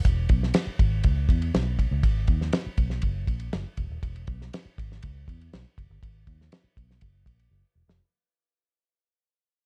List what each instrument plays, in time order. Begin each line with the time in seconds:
0.05 fingered electric bass E1, kick, hi-hat pedal, ride
0.29 fingered electric bass B1, kick, ride
0.43 snare
0.54 snare, ride
0.67 muted fingered electric bass stroke
0.79 fingered electric bass G#1, kick, ride
1.04 fingered electric bass C#2, kick, ride
1.29 fingered electric bass E2, kick, ride
1.42 ride
1.54 fingered electric bass B1, snare, ride
1.79 kick, ride
1.91 fingered electric bass C#2
2.03 fingered electric bass G#1, kick, ride
2.27 fingered electric bass D#2, kick, ride
2.41 snare
2.53 snare, ride
2.66 muted fingered electric bass stroke
2.78 fingered electric bass B1, kick, ride
2.90 snare
3.02 fingered electric bass F#1, kick, ride
3.27 fingered electric bass A#1, kick, ride
3.40 ride
3.53 fingered electric bass F#1, snare, ride
3.77 fingered electric bass E1, kick, ride
3.90 fingered electric bass D#1
4.03 fingered electric bass E1, kick, ride
4.16 ride
4.27 fingered electric bass B1, kick, ride
4.42 snare
4.53 snare, ride
4.65 muted fingered electric bass stroke
4.78 fingered electric bass G#1, kick, ride
4.92 snare
5.03 fingered electric bass C#2, kick, ride
5.28 fingered electric bass E2, kick, ride
5.41 ride
5.53 fingered electric bass B1, snare, ride
5.78 fingered electric bass F#1, kick, ride
5.90 fingered electric bass G1
6.03 fingered electric bass G#1, kick, ride
6.27 fingered electric bass D#2, kick, ride
6.41 snare
6.52 snare, ride
6.64 muted fingered electric bass stroke
6.77 fingered electric bass B1, kick, ride
6.91 snare
7.01 fingered electric bass F#1, kick, ride
7.26 fingered electric bass A#1, kick, ride
7.39 ride
7.51 fingered electric bass F#1
7.75 fingered electric bass E1
7.88 fingered electric bass F1, snare